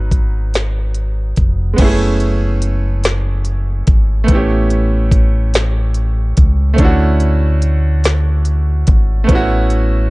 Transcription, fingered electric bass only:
Already playing: G#1
1.38 F1
1.79 F#1
3.88 G#1
4.29 A1
6.38 C#2
6.79 D2
8.89 G#1
9.29 A1

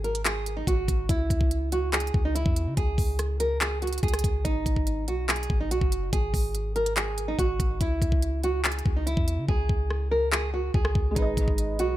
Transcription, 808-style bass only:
Already playing: G#1
0.67 G#1
0.88 G#1
1.09 C#2
1.30 C#2
2.14 C#2
2.46 E2
2.67 C#3
2.77 C#2
2.98 C#2
4.03 C#2
4.24 C#2
4.45 G#1
4.66 G#1
5.08 B1
5.50 G#1
5.71 B1
5.81 F#1
6.13 G#1
6.34 G#1
7.39 G#1
7.60 G#1
7.81 C#2
8.02 C#2
8.86 C#2
9.17 E2
9.38 C#3
9.49 C#2
9.69 C#2
10.74 C#2
10.95 C#2
11.16 G#1
11.37 G#1
11.79 B1

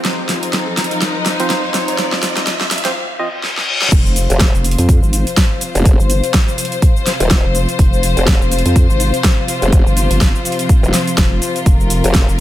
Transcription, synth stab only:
1.40 F3 C4 F4 C5
2.85 F3 C4 F4 C5
3.19 F3 C4 F4 D#5

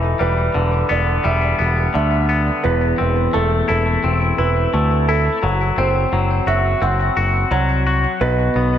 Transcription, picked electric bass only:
Already playing: E1
0.20 E1
0.55 E1
0.90 E1
1.25 E1
1.60 E1
1.95 D2
2.65 E1
3.00 E1
3.35 E1
3.69 E1
4.04 E1
4.38 E1
4.74 D2
5.43 F#1
5.77 F#1
6.12 F#1
6.46 F#1
6.82 F#1
7.17 F#1
7.51 C2
8.21 B1
8.55 B1

